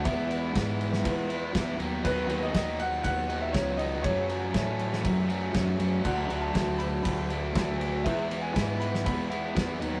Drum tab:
CC |----------------|x---------------|----------------|x---------------|
RD |x-x-x-x-x-x-x-x-|--x-x-x-x-x-x-x-|x-x-x-x-x-x-x-x-|--x-x-x-x-x-x-x-|
SD |----o--o----o---|----o-------o---|----o--o----o---|----o-------o---|
BD |o---o---o---o---|o---o---o---o---|o---o---o---o---|o---o---o---o---|

CC |----------------|
RD |x-x-x-x-x-x-x-x-|
SD |----o--o----o---|
BD |o---o---o---o---|